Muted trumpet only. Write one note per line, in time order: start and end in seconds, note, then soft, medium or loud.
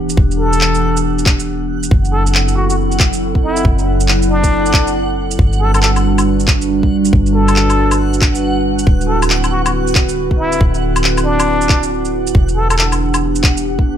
0.39 1.01 A4 medium
2.13 2.24 A4 medium
2.56 2.65 F#4 medium
2.69 2.75 F#4 medium
3.44 3.67 E4 medium
4.30 4.92 D4 medium
5.61 5.72 A4 medium
5.74 5.80 A4 medium
5.82 5.91 A4 medium
7.34 7.97 A4 medium
9.08 9.19 A4 medium
9.52 9.61 F#4 medium
9.65 9.71 F#4 medium
10.38 10.62 E4 medium
11.25 11.88 D4 medium
12.57 12.67 A4 medium
12.70 12.75 A4 medium
12.77 12.87 A4 medium